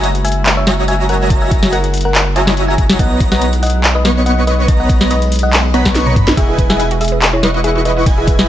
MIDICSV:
0, 0, Header, 1, 8, 480
1, 0, Start_track
1, 0, Tempo, 422535
1, 1480, Time_signature, 4, 2, 24, 8
1, 9639, End_track
2, 0, Start_track
2, 0, Title_t, "Digital synth lead"
2, 0, Program_c, 0, 84
2, 760, Note_on_c, 0, 82, 98
2, 1453, Note_off_c, 0, 82, 0
2, 1480, Note_on_c, 0, 82, 95
2, 1818, Note_off_c, 0, 82, 0
2, 1847, Note_on_c, 0, 82, 94
2, 1996, Note_off_c, 0, 82, 0
2, 2681, Note_on_c, 0, 82, 96
2, 3374, Note_off_c, 0, 82, 0
2, 3400, Note_on_c, 0, 82, 94
2, 3738, Note_off_c, 0, 82, 0
2, 3768, Note_on_c, 0, 82, 99
2, 3916, Note_off_c, 0, 82, 0
2, 4601, Note_on_c, 0, 85, 93
2, 5294, Note_off_c, 0, 85, 0
2, 5320, Note_on_c, 0, 82, 99
2, 5658, Note_off_c, 0, 82, 0
2, 5689, Note_on_c, 0, 82, 99
2, 5837, Note_off_c, 0, 82, 0
2, 6520, Note_on_c, 0, 83, 106
2, 6618, Note_off_c, 0, 83, 0
2, 6648, Note_on_c, 0, 85, 112
2, 6973, Note_off_c, 0, 85, 0
2, 7000, Note_on_c, 0, 83, 93
2, 7160, Note_off_c, 0, 83, 0
2, 7240, Note_on_c, 0, 80, 91
2, 7578, Note_off_c, 0, 80, 0
2, 7608, Note_on_c, 0, 80, 103
2, 7756, Note_off_c, 0, 80, 0
2, 8440, Note_on_c, 0, 85, 98
2, 9133, Note_off_c, 0, 85, 0
2, 9159, Note_on_c, 0, 80, 95
2, 9498, Note_off_c, 0, 80, 0
2, 9528, Note_on_c, 0, 80, 99
2, 9639, Note_off_c, 0, 80, 0
2, 9639, End_track
3, 0, Start_track
3, 0, Title_t, "Synth pluck"
3, 0, Program_c, 1, 84
3, 279, Note_on_c, 1, 76, 77
3, 279, Note_on_c, 1, 80, 93
3, 472, Note_off_c, 1, 76, 0
3, 472, Note_off_c, 1, 80, 0
3, 649, Note_on_c, 1, 73, 78
3, 650, Note_on_c, 1, 76, 95
3, 834, Note_off_c, 1, 73, 0
3, 834, Note_off_c, 1, 76, 0
3, 1002, Note_on_c, 1, 80, 94
3, 1003, Note_on_c, 1, 76, 79
3, 1135, Note_off_c, 1, 76, 0
3, 1135, Note_off_c, 1, 80, 0
3, 1243, Note_on_c, 1, 78, 97
3, 1244, Note_on_c, 1, 70, 76
3, 1434, Note_off_c, 1, 70, 0
3, 1434, Note_off_c, 1, 78, 0
3, 1611, Note_on_c, 1, 76, 75
3, 1611, Note_on_c, 1, 80, 94
3, 1794, Note_off_c, 1, 80, 0
3, 1795, Note_off_c, 1, 76, 0
3, 1961, Note_on_c, 1, 70, 72
3, 1962, Note_on_c, 1, 78, 96
3, 2153, Note_off_c, 1, 70, 0
3, 2153, Note_off_c, 1, 78, 0
3, 2330, Note_on_c, 1, 70, 82
3, 2330, Note_on_c, 1, 78, 97
3, 2514, Note_off_c, 1, 70, 0
3, 2514, Note_off_c, 1, 78, 0
3, 2679, Note_on_c, 1, 76, 79
3, 2679, Note_on_c, 1, 80, 94
3, 2872, Note_off_c, 1, 76, 0
3, 2872, Note_off_c, 1, 80, 0
3, 3048, Note_on_c, 1, 80, 98
3, 3049, Note_on_c, 1, 76, 77
3, 3233, Note_off_c, 1, 80, 0
3, 3234, Note_off_c, 1, 76, 0
3, 3400, Note_on_c, 1, 75, 78
3, 3400, Note_on_c, 1, 78, 99
3, 3592, Note_off_c, 1, 75, 0
3, 3592, Note_off_c, 1, 78, 0
3, 3769, Note_on_c, 1, 75, 76
3, 3770, Note_on_c, 1, 78, 95
3, 3953, Note_off_c, 1, 75, 0
3, 3954, Note_off_c, 1, 78, 0
3, 4120, Note_on_c, 1, 78, 101
3, 4121, Note_on_c, 1, 75, 78
3, 4312, Note_off_c, 1, 75, 0
3, 4312, Note_off_c, 1, 78, 0
3, 4488, Note_on_c, 1, 71, 78
3, 4488, Note_on_c, 1, 75, 93
3, 4673, Note_off_c, 1, 71, 0
3, 4673, Note_off_c, 1, 75, 0
3, 4840, Note_on_c, 1, 75, 83
3, 4840, Note_on_c, 1, 78, 92
3, 4974, Note_off_c, 1, 75, 0
3, 4974, Note_off_c, 1, 78, 0
3, 5082, Note_on_c, 1, 71, 77
3, 5082, Note_on_c, 1, 75, 97
3, 5273, Note_off_c, 1, 71, 0
3, 5273, Note_off_c, 1, 75, 0
3, 5451, Note_on_c, 1, 75, 76
3, 5452, Note_on_c, 1, 78, 91
3, 5634, Note_off_c, 1, 75, 0
3, 5635, Note_off_c, 1, 78, 0
3, 5802, Note_on_c, 1, 71, 74
3, 5802, Note_on_c, 1, 75, 94
3, 5993, Note_off_c, 1, 71, 0
3, 5993, Note_off_c, 1, 75, 0
3, 6170, Note_on_c, 1, 75, 82
3, 6171, Note_on_c, 1, 78, 94
3, 6354, Note_off_c, 1, 75, 0
3, 6354, Note_off_c, 1, 78, 0
3, 6522, Note_on_c, 1, 82, 97
3, 6523, Note_on_c, 1, 78, 75
3, 6713, Note_off_c, 1, 78, 0
3, 6713, Note_off_c, 1, 82, 0
3, 6890, Note_on_c, 1, 82, 80
3, 6891, Note_on_c, 1, 85, 94
3, 7074, Note_off_c, 1, 82, 0
3, 7075, Note_off_c, 1, 85, 0
3, 7240, Note_on_c, 1, 68, 80
3, 7240, Note_on_c, 1, 76, 99
3, 7432, Note_off_c, 1, 68, 0
3, 7432, Note_off_c, 1, 76, 0
3, 7609, Note_on_c, 1, 76, 97
3, 7610, Note_on_c, 1, 68, 77
3, 7794, Note_off_c, 1, 68, 0
3, 7794, Note_off_c, 1, 76, 0
3, 7961, Note_on_c, 1, 68, 79
3, 7961, Note_on_c, 1, 76, 93
3, 8153, Note_off_c, 1, 68, 0
3, 8153, Note_off_c, 1, 76, 0
3, 8329, Note_on_c, 1, 64, 79
3, 8330, Note_on_c, 1, 73, 100
3, 8514, Note_off_c, 1, 64, 0
3, 8514, Note_off_c, 1, 73, 0
3, 8681, Note_on_c, 1, 68, 83
3, 8681, Note_on_c, 1, 76, 93
3, 8814, Note_off_c, 1, 68, 0
3, 8814, Note_off_c, 1, 76, 0
3, 8921, Note_on_c, 1, 71, 76
3, 8921, Note_on_c, 1, 75, 99
3, 9113, Note_off_c, 1, 71, 0
3, 9113, Note_off_c, 1, 75, 0
3, 9291, Note_on_c, 1, 68, 76
3, 9291, Note_on_c, 1, 76, 95
3, 9474, Note_off_c, 1, 76, 0
3, 9475, Note_off_c, 1, 68, 0
3, 9639, End_track
4, 0, Start_track
4, 0, Title_t, "Supersaw synth"
4, 0, Program_c, 2, 81
4, 759, Note_on_c, 2, 73, 87
4, 759, Note_on_c, 2, 76, 86
4, 760, Note_on_c, 2, 66, 100
4, 760, Note_on_c, 2, 75, 88
4, 760, Note_on_c, 2, 80, 88
4, 760, Note_on_c, 2, 82, 108
4, 1453, Note_off_c, 2, 73, 0
4, 1453, Note_off_c, 2, 75, 0
4, 1453, Note_off_c, 2, 76, 0
4, 1453, Note_off_c, 2, 82, 0
4, 1454, Note_off_c, 2, 66, 0
4, 1454, Note_off_c, 2, 80, 0
4, 1479, Note_on_c, 2, 66, 86
4, 1479, Note_on_c, 2, 73, 81
4, 1479, Note_on_c, 2, 75, 76
4, 1479, Note_on_c, 2, 76, 77
4, 1479, Note_on_c, 2, 82, 89
4, 1480, Note_on_c, 2, 80, 77
4, 1817, Note_off_c, 2, 66, 0
4, 1817, Note_off_c, 2, 73, 0
4, 1817, Note_off_c, 2, 75, 0
4, 1817, Note_off_c, 2, 76, 0
4, 1818, Note_off_c, 2, 80, 0
4, 1818, Note_off_c, 2, 82, 0
4, 1848, Note_on_c, 2, 66, 85
4, 1848, Note_on_c, 2, 73, 75
4, 1848, Note_on_c, 2, 75, 79
4, 1848, Note_on_c, 2, 76, 77
4, 1848, Note_on_c, 2, 80, 78
4, 1848, Note_on_c, 2, 82, 90
4, 1996, Note_off_c, 2, 66, 0
4, 1996, Note_off_c, 2, 73, 0
4, 1996, Note_off_c, 2, 75, 0
4, 1996, Note_off_c, 2, 76, 0
4, 1996, Note_off_c, 2, 80, 0
4, 1996, Note_off_c, 2, 82, 0
4, 2679, Note_on_c, 2, 66, 92
4, 2679, Note_on_c, 2, 73, 88
4, 2679, Note_on_c, 2, 76, 89
4, 2679, Note_on_c, 2, 80, 90
4, 2680, Note_on_c, 2, 75, 82
4, 2680, Note_on_c, 2, 82, 107
4, 3373, Note_off_c, 2, 66, 0
4, 3373, Note_off_c, 2, 73, 0
4, 3373, Note_off_c, 2, 75, 0
4, 3373, Note_off_c, 2, 76, 0
4, 3373, Note_off_c, 2, 80, 0
4, 3373, Note_off_c, 2, 82, 0
4, 3400, Note_on_c, 2, 59, 88
4, 3400, Note_on_c, 2, 71, 77
4, 3400, Note_on_c, 2, 73, 80
4, 3400, Note_on_c, 2, 75, 80
4, 3400, Note_on_c, 2, 82, 92
4, 3738, Note_off_c, 2, 59, 0
4, 3738, Note_off_c, 2, 71, 0
4, 3738, Note_off_c, 2, 73, 0
4, 3738, Note_off_c, 2, 75, 0
4, 3738, Note_off_c, 2, 82, 0
4, 3768, Note_on_c, 2, 59, 86
4, 3768, Note_on_c, 2, 71, 77
4, 3768, Note_on_c, 2, 73, 74
4, 3768, Note_on_c, 2, 75, 79
4, 3768, Note_on_c, 2, 82, 90
4, 3916, Note_off_c, 2, 59, 0
4, 3916, Note_off_c, 2, 71, 0
4, 3916, Note_off_c, 2, 73, 0
4, 3916, Note_off_c, 2, 75, 0
4, 3916, Note_off_c, 2, 82, 0
4, 4599, Note_on_c, 2, 71, 91
4, 4599, Note_on_c, 2, 73, 88
4, 4600, Note_on_c, 2, 59, 92
4, 4600, Note_on_c, 2, 75, 86
4, 4600, Note_on_c, 2, 85, 111
4, 5293, Note_off_c, 2, 71, 0
4, 5293, Note_off_c, 2, 73, 0
4, 5293, Note_off_c, 2, 75, 0
4, 5294, Note_off_c, 2, 59, 0
4, 5294, Note_off_c, 2, 85, 0
4, 5319, Note_on_c, 2, 59, 89
4, 5319, Note_on_c, 2, 82, 92
4, 5320, Note_on_c, 2, 71, 75
4, 5320, Note_on_c, 2, 73, 77
4, 5320, Note_on_c, 2, 75, 76
4, 5658, Note_off_c, 2, 59, 0
4, 5658, Note_off_c, 2, 71, 0
4, 5658, Note_off_c, 2, 73, 0
4, 5658, Note_off_c, 2, 75, 0
4, 5658, Note_off_c, 2, 82, 0
4, 5688, Note_on_c, 2, 59, 86
4, 5688, Note_on_c, 2, 71, 76
4, 5688, Note_on_c, 2, 73, 79
4, 5688, Note_on_c, 2, 75, 74
4, 5688, Note_on_c, 2, 82, 89
4, 5836, Note_off_c, 2, 59, 0
4, 5836, Note_off_c, 2, 71, 0
4, 5836, Note_off_c, 2, 73, 0
4, 5836, Note_off_c, 2, 75, 0
4, 5836, Note_off_c, 2, 82, 0
4, 6520, Note_on_c, 2, 73, 94
4, 6520, Note_on_c, 2, 75, 90
4, 6520, Note_on_c, 2, 83, 111
4, 6521, Note_on_c, 2, 59, 103
4, 6521, Note_on_c, 2, 71, 96
4, 6618, Note_off_c, 2, 59, 0
4, 6618, Note_off_c, 2, 71, 0
4, 6618, Note_off_c, 2, 73, 0
4, 6618, Note_off_c, 2, 75, 0
4, 6618, Note_off_c, 2, 83, 0
4, 6649, Note_on_c, 2, 59, 101
4, 6649, Note_on_c, 2, 71, 94
4, 6649, Note_on_c, 2, 73, 91
4, 6649, Note_on_c, 2, 75, 96
4, 6649, Note_on_c, 2, 85, 112
4, 6974, Note_off_c, 2, 59, 0
4, 6974, Note_off_c, 2, 71, 0
4, 6974, Note_off_c, 2, 73, 0
4, 6974, Note_off_c, 2, 75, 0
4, 6974, Note_off_c, 2, 85, 0
4, 7000, Note_on_c, 2, 59, 80
4, 7000, Note_on_c, 2, 71, 75
4, 7000, Note_on_c, 2, 73, 74
4, 7000, Note_on_c, 2, 75, 79
4, 7000, Note_on_c, 2, 83, 87
4, 7160, Note_off_c, 2, 59, 0
4, 7160, Note_off_c, 2, 71, 0
4, 7160, Note_off_c, 2, 73, 0
4, 7160, Note_off_c, 2, 75, 0
4, 7160, Note_off_c, 2, 83, 0
4, 7239, Note_on_c, 2, 78, 75
4, 7240, Note_on_c, 2, 64, 88
4, 7240, Note_on_c, 2, 71, 80
4, 7240, Note_on_c, 2, 75, 76
4, 7240, Note_on_c, 2, 80, 91
4, 7578, Note_off_c, 2, 64, 0
4, 7578, Note_off_c, 2, 71, 0
4, 7578, Note_off_c, 2, 75, 0
4, 7578, Note_off_c, 2, 78, 0
4, 7578, Note_off_c, 2, 80, 0
4, 7608, Note_on_c, 2, 64, 85
4, 7608, Note_on_c, 2, 71, 78
4, 7608, Note_on_c, 2, 75, 80
4, 7608, Note_on_c, 2, 78, 73
4, 7608, Note_on_c, 2, 80, 98
4, 7756, Note_off_c, 2, 64, 0
4, 7756, Note_off_c, 2, 71, 0
4, 7756, Note_off_c, 2, 75, 0
4, 7756, Note_off_c, 2, 78, 0
4, 7756, Note_off_c, 2, 80, 0
4, 8440, Note_on_c, 2, 64, 93
4, 8441, Note_on_c, 2, 71, 87
4, 8441, Note_on_c, 2, 75, 88
4, 8441, Note_on_c, 2, 78, 86
4, 8441, Note_on_c, 2, 85, 108
4, 9134, Note_off_c, 2, 64, 0
4, 9134, Note_off_c, 2, 71, 0
4, 9134, Note_off_c, 2, 75, 0
4, 9134, Note_off_c, 2, 78, 0
4, 9134, Note_off_c, 2, 85, 0
4, 9160, Note_on_c, 2, 71, 77
4, 9160, Note_on_c, 2, 75, 75
4, 9160, Note_on_c, 2, 80, 97
4, 9161, Note_on_c, 2, 64, 83
4, 9161, Note_on_c, 2, 78, 74
4, 9498, Note_off_c, 2, 64, 0
4, 9498, Note_off_c, 2, 71, 0
4, 9498, Note_off_c, 2, 75, 0
4, 9498, Note_off_c, 2, 78, 0
4, 9498, Note_off_c, 2, 80, 0
4, 9528, Note_on_c, 2, 64, 82
4, 9528, Note_on_c, 2, 71, 77
4, 9528, Note_on_c, 2, 75, 75
4, 9528, Note_on_c, 2, 78, 77
4, 9528, Note_on_c, 2, 80, 93
4, 9639, Note_off_c, 2, 64, 0
4, 9639, Note_off_c, 2, 71, 0
4, 9639, Note_off_c, 2, 75, 0
4, 9639, Note_off_c, 2, 78, 0
4, 9639, Note_off_c, 2, 80, 0
4, 9639, End_track
5, 0, Start_track
5, 0, Title_t, "Synth arpeggio sound"
5, 0, Program_c, 3, 84
5, 7241, Note_on_c, 3, 66, 84
5, 7322, Note_off_c, 3, 66, 0
5, 7369, Note_on_c, 3, 68, 78
5, 7440, Note_off_c, 3, 68, 0
5, 7480, Note_on_c, 3, 71, 110
5, 7562, Note_off_c, 3, 71, 0
5, 7608, Note_on_c, 3, 75, 108
5, 7715, Note_off_c, 3, 75, 0
5, 7720, Note_on_c, 3, 76, 84
5, 7801, Note_off_c, 3, 76, 0
5, 7848, Note_on_c, 3, 66, 105
5, 7919, Note_off_c, 3, 66, 0
5, 7960, Note_on_c, 3, 68, 80
5, 8042, Note_off_c, 3, 68, 0
5, 8087, Note_on_c, 3, 71, 77
5, 8159, Note_off_c, 3, 71, 0
5, 8198, Note_on_c, 3, 66, 83
5, 8281, Note_off_c, 3, 66, 0
5, 8327, Note_on_c, 3, 68, 82
5, 8399, Note_off_c, 3, 68, 0
5, 8440, Note_on_c, 3, 71, 100
5, 8521, Note_off_c, 3, 71, 0
5, 8569, Note_on_c, 3, 75, 96
5, 8675, Note_off_c, 3, 75, 0
5, 8680, Note_on_c, 3, 76, 76
5, 8762, Note_off_c, 3, 76, 0
5, 8809, Note_on_c, 3, 66, 99
5, 8880, Note_off_c, 3, 66, 0
5, 8920, Note_on_c, 3, 68, 76
5, 9002, Note_off_c, 3, 68, 0
5, 9049, Note_on_c, 3, 71, 81
5, 9120, Note_off_c, 3, 71, 0
5, 9161, Note_on_c, 3, 66, 86
5, 9242, Note_off_c, 3, 66, 0
5, 9290, Note_on_c, 3, 68, 78
5, 9360, Note_off_c, 3, 68, 0
5, 9402, Note_on_c, 3, 71, 111
5, 9482, Note_off_c, 3, 71, 0
5, 9530, Note_on_c, 3, 75, 111
5, 9635, Note_off_c, 3, 75, 0
5, 9639, End_track
6, 0, Start_track
6, 0, Title_t, "Ambient pad"
6, 0, Program_c, 4, 92
6, 0, Note_on_c, 4, 54, 77
6, 0, Note_on_c, 4, 56, 72
6, 0, Note_on_c, 4, 64, 93
6, 3362, Note_off_c, 4, 54, 0
6, 3362, Note_off_c, 4, 64, 0
6, 3398, Note_on_c, 4, 59, 73
6, 3398, Note_on_c, 4, 75, 89
6, 7195, Note_off_c, 4, 56, 0
6, 7201, Note_off_c, 4, 59, 0
6, 7239, Note_on_c, 4, 52, 82
6, 7240, Note_on_c, 4, 66, 71
6, 7240, Note_on_c, 4, 68, 88
6, 9639, Note_off_c, 4, 52, 0
6, 9639, Note_off_c, 4, 66, 0
6, 9639, Note_off_c, 4, 68, 0
6, 9639, Note_off_c, 4, 75, 0
6, 9639, End_track
7, 0, Start_track
7, 0, Title_t, "Sub bass"
7, 0, Program_c, 5, 38
7, 0, Note_on_c, 5, 30, 90
7, 3378, Note_off_c, 5, 30, 0
7, 3401, Note_on_c, 5, 35, 91
7, 7218, Note_off_c, 5, 35, 0
7, 7242, Note_on_c, 5, 28, 86
7, 9639, Note_off_c, 5, 28, 0
7, 9639, End_track
8, 0, Start_track
8, 0, Title_t, "Drums"
8, 40, Note_on_c, 9, 42, 82
8, 154, Note_off_c, 9, 42, 0
8, 169, Note_on_c, 9, 42, 59
8, 280, Note_on_c, 9, 46, 97
8, 283, Note_off_c, 9, 42, 0
8, 323, Note_on_c, 9, 42, 60
8, 360, Note_off_c, 9, 42, 0
8, 360, Note_on_c, 9, 42, 78
8, 394, Note_off_c, 9, 46, 0
8, 474, Note_off_c, 9, 42, 0
8, 521, Note_on_c, 9, 39, 115
8, 521, Note_on_c, 9, 42, 80
8, 634, Note_off_c, 9, 39, 0
8, 634, Note_off_c, 9, 42, 0
8, 760, Note_on_c, 9, 40, 83
8, 760, Note_on_c, 9, 42, 61
8, 874, Note_off_c, 9, 40, 0
8, 874, Note_off_c, 9, 42, 0
8, 1000, Note_on_c, 9, 42, 71
8, 1113, Note_off_c, 9, 42, 0
8, 1240, Note_on_c, 9, 42, 59
8, 1354, Note_off_c, 9, 42, 0
8, 1480, Note_on_c, 9, 36, 112
8, 1480, Note_on_c, 9, 42, 76
8, 1593, Note_off_c, 9, 42, 0
8, 1594, Note_off_c, 9, 36, 0
8, 1720, Note_on_c, 9, 36, 104
8, 1720, Note_on_c, 9, 42, 66
8, 1834, Note_off_c, 9, 36, 0
8, 1834, Note_off_c, 9, 42, 0
8, 1849, Note_on_c, 9, 40, 68
8, 1960, Note_on_c, 9, 42, 82
8, 1962, Note_off_c, 9, 40, 0
8, 2074, Note_off_c, 9, 42, 0
8, 2089, Note_on_c, 9, 42, 62
8, 2200, Note_on_c, 9, 46, 98
8, 2203, Note_off_c, 9, 42, 0
8, 2244, Note_on_c, 9, 42, 66
8, 2280, Note_off_c, 9, 42, 0
8, 2280, Note_on_c, 9, 42, 80
8, 2314, Note_off_c, 9, 46, 0
8, 2394, Note_off_c, 9, 42, 0
8, 2440, Note_on_c, 9, 39, 117
8, 2440, Note_on_c, 9, 42, 79
8, 2553, Note_off_c, 9, 39, 0
8, 2553, Note_off_c, 9, 42, 0
8, 2680, Note_on_c, 9, 42, 64
8, 2794, Note_off_c, 9, 42, 0
8, 2809, Note_on_c, 9, 39, 35
8, 2809, Note_on_c, 9, 40, 83
8, 2920, Note_on_c, 9, 42, 74
8, 2922, Note_off_c, 9, 39, 0
8, 2922, Note_off_c, 9, 40, 0
8, 3034, Note_off_c, 9, 42, 0
8, 3160, Note_on_c, 9, 36, 104
8, 3161, Note_on_c, 9, 42, 61
8, 3274, Note_off_c, 9, 36, 0
8, 3274, Note_off_c, 9, 42, 0
8, 3289, Note_on_c, 9, 40, 86
8, 3401, Note_on_c, 9, 36, 113
8, 3401, Note_on_c, 9, 42, 79
8, 3403, Note_off_c, 9, 40, 0
8, 3514, Note_off_c, 9, 36, 0
8, 3515, Note_off_c, 9, 42, 0
8, 3640, Note_on_c, 9, 42, 69
8, 3641, Note_on_c, 9, 36, 101
8, 3754, Note_off_c, 9, 36, 0
8, 3754, Note_off_c, 9, 42, 0
8, 3769, Note_on_c, 9, 40, 66
8, 3881, Note_on_c, 9, 42, 84
8, 3883, Note_off_c, 9, 40, 0
8, 3994, Note_off_c, 9, 42, 0
8, 4009, Note_on_c, 9, 42, 66
8, 4120, Note_on_c, 9, 46, 99
8, 4123, Note_off_c, 9, 42, 0
8, 4163, Note_on_c, 9, 42, 69
8, 4200, Note_off_c, 9, 42, 0
8, 4200, Note_on_c, 9, 42, 81
8, 4234, Note_off_c, 9, 46, 0
8, 4314, Note_off_c, 9, 42, 0
8, 4360, Note_on_c, 9, 39, 114
8, 4360, Note_on_c, 9, 42, 77
8, 4474, Note_off_c, 9, 39, 0
8, 4474, Note_off_c, 9, 42, 0
8, 4600, Note_on_c, 9, 40, 82
8, 4600, Note_on_c, 9, 42, 64
8, 4714, Note_off_c, 9, 40, 0
8, 4714, Note_off_c, 9, 42, 0
8, 4841, Note_on_c, 9, 42, 80
8, 4955, Note_off_c, 9, 42, 0
8, 5081, Note_on_c, 9, 42, 68
8, 5195, Note_off_c, 9, 42, 0
8, 5321, Note_on_c, 9, 36, 123
8, 5321, Note_on_c, 9, 42, 84
8, 5434, Note_off_c, 9, 42, 0
8, 5435, Note_off_c, 9, 36, 0
8, 5561, Note_on_c, 9, 36, 104
8, 5561, Note_on_c, 9, 42, 74
8, 5675, Note_off_c, 9, 36, 0
8, 5675, Note_off_c, 9, 42, 0
8, 5690, Note_on_c, 9, 40, 59
8, 5801, Note_on_c, 9, 42, 86
8, 5803, Note_off_c, 9, 40, 0
8, 5915, Note_off_c, 9, 42, 0
8, 5930, Note_on_c, 9, 42, 62
8, 6042, Note_on_c, 9, 46, 102
8, 6044, Note_off_c, 9, 42, 0
8, 6085, Note_on_c, 9, 42, 69
8, 6122, Note_off_c, 9, 42, 0
8, 6122, Note_on_c, 9, 42, 87
8, 6155, Note_off_c, 9, 46, 0
8, 6236, Note_off_c, 9, 42, 0
8, 6282, Note_on_c, 9, 39, 113
8, 6282, Note_on_c, 9, 42, 79
8, 6395, Note_off_c, 9, 39, 0
8, 6395, Note_off_c, 9, 42, 0
8, 6522, Note_on_c, 9, 42, 66
8, 6636, Note_off_c, 9, 42, 0
8, 6650, Note_on_c, 9, 36, 57
8, 6650, Note_on_c, 9, 39, 34
8, 6650, Note_on_c, 9, 40, 77
8, 6762, Note_on_c, 9, 38, 60
8, 6762, Note_on_c, 9, 42, 80
8, 6763, Note_off_c, 9, 36, 0
8, 6764, Note_off_c, 9, 39, 0
8, 6764, Note_off_c, 9, 40, 0
8, 6876, Note_off_c, 9, 38, 0
8, 6876, Note_off_c, 9, 42, 0
8, 6890, Note_on_c, 9, 48, 60
8, 7001, Note_on_c, 9, 36, 104
8, 7001, Note_on_c, 9, 42, 66
8, 7001, Note_on_c, 9, 47, 87
8, 7004, Note_off_c, 9, 48, 0
8, 7115, Note_off_c, 9, 36, 0
8, 7115, Note_off_c, 9, 42, 0
8, 7115, Note_off_c, 9, 47, 0
8, 7130, Note_on_c, 9, 38, 88
8, 7241, Note_on_c, 9, 36, 117
8, 7241, Note_on_c, 9, 42, 83
8, 7241, Note_on_c, 9, 51, 47
8, 7243, Note_off_c, 9, 38, 0
8, 7355, Note_off_c, 9, 36, 0
8, 7355, Note_off_c, 9, 42, 0
8, 7355, Note_off_c, 9, 51, 0
8, 7481, Note_on_c, 9, 36, 107
8, 7481, Note_on_c, 9, 42, 74
8, 7595, Note_off_c, 9, 36, 0
8, 7595, Note_off_c, 9, 42, 0
8, 7609, Note_on_c, 9, 40, 58
8, 7722, Note_on_c, 9, 42, 91
8, 7723, Note_off_c, 9, 40, 0
8, 7835, Note_off_c, 9, 42, 0
8, 7850, Note_on_c, 9, 42, 63
8, 7962, Note_on_c, 9, 46, 94
8, 7964, Note_off_c, 9, 42, 0
8, 8004, Note_on_c, 9, 42, 73
8, 8041, Note_off_c, 9, 42, 0
8, 8041, Note_on_c, 9, 42, 86
8, 8075, Note_off_c, 9, 46, 0
8, 8155, Note_off_c, 9, 42, 0
8, 8202, Note_on_c, 9, 39, 121
8, 8202, Note_on_c, 9, 42, 85
8, 8315, Note_off_c, 9, 39, 0
8, 8315, Note_off_c, 9, 42, 0
8, 8442, Note_on_c, 9, 40, 71
8, 8442, Note_on_c, 9, 42, 65
8, 8555, Note_off_c, 9, 40, 0
8, 8555, Note_off_c, 9, 42, 0
8, 8681, Note_on_c, 9, 42, 78
8, 8795, Note_off_c, 9, 42, 0
8, 8921, Note_on_c, 9, 42, 68
8, 9035, Note_off_c, 9, 42, 0
8, 9161, Note_on_c, 9, 36, 125
8, 9161, Note_on_c, 9, 42, 80
8, 9161, Note_on_c, 9, 51, 47
8, 9275, Note_off_c, 9, 36, 0
8, 9275, Note_off_c, 9, 42, 0
8, 9275, Note_off_c, 9, 51, 0
8, 9401, Note_on_c, 9, 36, 113
8, 9401, Note_on_c, 9, 42, 70
8, 9515, Note_off_c, 9, 36, 0
8, 9515, Note_off_c, 9, 42, 0
8, 9530, Note_on_c, 9, 40, 61
8, 9639, Note_off_c, 9, 40, 0
8, 9639, End_track
0, 0, End_of_file